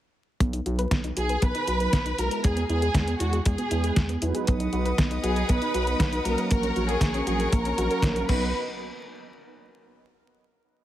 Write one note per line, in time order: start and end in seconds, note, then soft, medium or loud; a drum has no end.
0.40 0.60 B1 loud
0.40 0.49 B3 loud
0.40 kick loud
0.40 closed hi-hat medium
0.53 0.58 D#4 medium
0.53 closed hi-hat soft
0.66 0.86 B1 loud
0.66 0.84 F#3 loud
0.66 0.84 B3 medium
0.66 0.84 D#4 medium
0.66 0.74 F#4 medium
0.66 0.84 B4 loud
0.66 closed hi-hat soft
0.79 0.91 B4 loud
0.79 closed hi-hat soft
0.91 1.11 B1 medium
0.91 1.00 B3 medium
0.91 kick loud
0.91 snare loud
0.91 closed hi-hat medium
1.04 1.13 D#4 medium
1.04 closed hi-hat soft
1.17 1.37 B1 medium
1.17 1.35 F#3 medium
1.17 1.35 B3 medium
1.17 1.35 D#4 medium
1.17 1.25 F#4 medium
1.17 1.35 G#4 loud
1.17 1.41 G#4 loud
1.17 closed hi-hat medium
1.29 1.35 B4 medium
1.29 closed hi-hat soft
1.42 1.52 B1 loud
1.42 1.51 B3 loud
1.42 2.18 B4 loud
1.42 kick loud
1.42 closed hi-hat loud
1.55 1.60 D#4 medium
1.55 closed hi-hat soft
1.67 1.87 B1 medium
1.67 1.96 F#3 medium
1.67 1.96 B3 medium
1.67 1.96 D#4 medium
1.67 1.76 F#4 medium
1.67 closed hi-hat medium
1.80 1.92 B4 medium
1.80 closed hi-hat soft
1.93 2.13 B1 medium
1.93 2.02 B3 medium
1.93 kick loud
1.93 snare loud
1.93 closed hi-hat medium
2.06 2.14 D#4 medium
2.06 closed hi-hat soft
2.18 2.28 B1 medium
2.18 2.66 G#3 medium
2.18 2.66 B3 medium
2.18 2.66 E4 medium
2.18 2.27 F#4 medium
2.18 2.44 A#4 loud
2.18 closed hi-hat medium
2.31 2.36 B4 medium
2.31 closed hi-hat soft
2.44 2.64 E2 loud
2.44 2.52 G#3 loud
2.44 2.68 G#4 loud
2.44 kick loud
2.44 closed hi-hat medium
2.57 2.62 B3 medium
2.57 closed hi-hat soft
2.69 2.89 E2 loud
2.69 2.87 G#3 loud
2.69 2.87 B3 medium
2.69 2.78 E4 medium
2.69 2.87 E4 medium
2.69 3.17 G#4 loud
2.69 2.87 B4 loud
2.69 closed hi-hat soft
2.82 2.94 G#4 loud
2.82 closed hi-hat soft
2.94 3.15 E2 medium
2.94 3.03 G#3 medium
2.94 kick loud
2.94 snare loud
2.94 closed hi-hat medium
3.08 3.16 B3 medium
3.08 closed hi-hat soft
3.20 3.40 E2 medium
3.20 3.38 G#3 medium
3.20 3.38 B3 medium
3.20 3.29 E4 medium
3.20 3.38 E4 medium
3.20 3.46 F#4 medium
3.20 3.38 G#4 loud
3.20 closed hi-hat medium
3.33 3.38 G#4 medium
3.33 closed hi-hat soft
3.46 3.56 E2 medium
3.46 3.54 G#3 loud
3.46 4.18 G#4 medium
3.46 kick loud
3.46 closed hi-hat medium
3.58 3.63 B3 medium
3.58 closed hi-hat soft
3.71 3.91 E2 medium
3.71 4.00 G#3 medium
3.71 4.00 B3 medium
3.71 3.79 E4 medium
3.71 4.00 E4 medium
3.71 4.00 B4 loud
3.71 closed hi-hat medium
3.84 3.96 G#4 loud
3.84 closed hi-hat soft
3.96 4.16 E2 medium
3.96 4.05 G#3 medium
3.96 kick loud
3.96 snare loud
3.96 closed hi-hat medium
4.09 4.18 B3 medium
4.09 closed hi-hat soft
4.22 4.32 E2 medium
4.22 4.70 F#3 loud
4.22 4.70 B3 medium
4.22 4.70 D#4 medium
4.22 4.30 E4 medium
4.22 4.70 B4 loud
4.22 closed hi-hat medium
4.35 4.40 G#4 medium
4.35 closed hi-hat soft
4.47 4.68 B1 loud
4.47 4.56 B3 loud
4.47 6.49 B4 medium
4.47 6.49 D#5 medium
4.47 8.25 F#5 medium
4.47 6.49 D#6 medium
4.47 kick loud
4.47 closed hi-hat medium
4.60 4.65 D#4 medium
4.60 closed hi-hat soft
4.73 4.93 B1 loud
4.73 4.91 F#3 loud
4.73 4.91 B3 medium
4.73 4.91 D#4 medium
4.73 4.81 F#4 medium
4.73 4.91 B4 loud
4.73 closed hi-hat soft
4.85 4.98 B4 loud
4.85 closed hi-hat soft
4.98 5.18 B1 medium
4.98 5.07 B3 medium
4.98 kick loud
4.98 snare loud
4.98 closed hi-hat medium
5.11 5.19 D#4 medium
5.11 closed hi-hat soft
5.23 5.43 B1 medium
5.23 5.42 F#3 medium
5.23 5.42 B3 medium
5.23 5.42 D#4 medium
5.23 5.32 F#4 medium
5.23 5.47 G#4 loud
5.23 5.42 G#4 loud
5.23 closed hi-hat medium
5.36 5.41 B4 medium
5.36 closed hi-hat soft
5.49 5.59 B1 loud
5.49 5.57 B3 loud
5.49 6.25 B4 loud
5.49 kick loud
5.49 closed hi-hat medium
5.62 5.67 D#4 medium
5.62 closed hi-hat soft
5.74 5.94 B1 medium
5.74 6.03 F#3 medium
5.74 6.03 B3 medium
5.74 6.03 D#4 medium
5.74 5.83 F#4 medium
5.74 6.03 B4 loud
5.74 closed hi-hat medium
5.87 5.99 B4 loud
5.87 closed hi-hat soft
6.00 6.20 B1 medium
6.00 6.08 B3 medium
6.00 kick loud
6.00 snare loud
6.00 closed hi-hat medium
6.13 6.21 D#4 medium
6.13 closed hi-hat soft
6.25 6.35 B1 medium
6.25 6.73 F#3 loud
6.25 6.73 A#3 medium
6.25 6.73 C#4 medium
6.25 6.34 F#4 medium
6.25 6.49 A#4 loud
6.25 6.73 A#4 loud
6.25 closed hi-hat medium
6.38 6.43 B4 medium
6.38 closed hi-hat soft
6.50 6.71 A#1 loud
6.50 6.59 A#3 loud
6.50 6.86 A#4 loud
6.50 8.27 A#4 medium
6.50 8.27 C#5 medium
6.50 8.27 C#6 medium
6.50 kick loud
6.50 closed hi-hat medium
6.63 6.68 C#4 medium
6.63 closed hi-hat soft
6.76 6.96 A#1 loud
6.76 6.94 F#3 loud
6.76 6.94 A#3 medium
6.76 6.94 C#4 medium
6.76 6.85 F#4 medium
6.76 6.94 A#4 loud
6.76 closed hi-hat soft
6.88 7.26 G#4 loud
6.88 7.01 A#4 loud
6.88 closed hi-hat soft
7.01 7.21 A#1 medium
7.01 7.10 A#3 medium
7.01 kick loud
7.01 snare loud
7.01 closed hi-hat medium
7.14 7.23 C#4 medium
7.14 closed hi-hat soft
7.27 7.47 A#1 medium
7.27 7.45 F#3 medium
7.27 7.45 A#3 medium
7.27 7.45 C#4 medium
7.27 7.35 F#4 medium
7.27 7.50 G#4 medium
7.27 7.45 G#4 loud
7.27 closed hi-hat medium
7.40 7.45 A#4 medium
7.40 closed hi-hat soft
7.52 7.72 A#1 medium
7.52 7.61 A#3 loud
7.52 8.29 A#4 medium
7.52 kick loud
7.52 closed hi-hat medium
7.65 7.70 C#4 medium
7.65 closed hi-hat soft
7.78 7.88 A#1 loud
7.78 8.26 F#3 medium
7.78 8.26 A#3 medium
7.78 8.26 C#4 medium
7.78 7.86 F#4 medium
7.78 8.26 A#4 loud
7.78 closed hi-hat medium
7.91 8.03 A#4 loud
7.91 closed hi-hat soft
8.02 8.23 A#1 medium
8.02 8.12 A#3 medium
8.02 kick loud
8.02 snare loud
8.02 closed hi-hat medium
8.16 8.24 C#4 medium
8.16 closed hi-hat soft
8.29 8.53 B1 loud
8.29 8.48 F#3 medium
8.29 8.52 B3 medium
8.29 8.48 B3 medium
8.29 8.48 D#4 medium
8.29 8.52 F#4 medium
8.29 8.48 B4 medium
8.29 8.52 B4 medium
8.29 8.52 D#5 medium
8.29 8.52 B5 medium
8.29 kick loud
8.29 crash medium